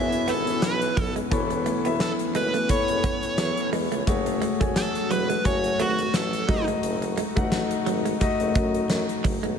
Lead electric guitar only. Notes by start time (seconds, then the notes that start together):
Already playing: E5
0.29 A4
0.64 B4
2.01 A4
2.36 B4
2.70 C#5
4.77 A4
5.12 B4
5.46 C#5
5.81 F#4
6.15 A4